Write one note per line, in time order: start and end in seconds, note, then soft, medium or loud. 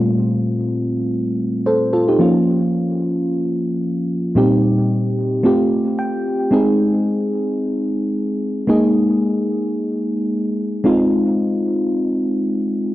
0.00 1.62 A#2 medium
0.00 1.62 G3 medium
0.00 1.63 A3 medium
0.00 1.63 C4 medium
0.00 1.63 F4 medium
1.66 1.92 A4 medium
1.66 1.92 C5 medium
1.93 2.08 F4 medium
1.93 2.07 A4 medium
2.08 2.34 D#4 medium
2.08 2.34 G4 medium
2.19 4.32 F3 medium
2.19 4.32 A#3 medium
2.19 4.33 C#4 medium
2.19 4.33 F4 medium
4.35 5.42 A#2 medium
4.35 5.42 G3 medium
4.35 5.43 C4 medium
4.35 5.43 D#4 medium
4.35 5.43 G4 medium
5.43 6.50 A3 medium
5.43 6.50 C4 medium
5.43 6.51 F4 medium
5.43 6.51 G4 medium
5.99 6.49 G5 medium
6.51 8.64 G#3 medium
6.51 8.65 C4 medium
6.51 8.65 D#4 medium
6.51 8.65 G#4 medium
8.67 10.81 G#3 medium
8.67 10.81 A#3 medium
8.67 10.81 D#4 medium
8.67 10.82 G#4 medium
10.84 12.95 G#3 medium
10.84 12.95 C4 medium
10.84 12.95 D#4 medium
10.84 12.95 F4 medium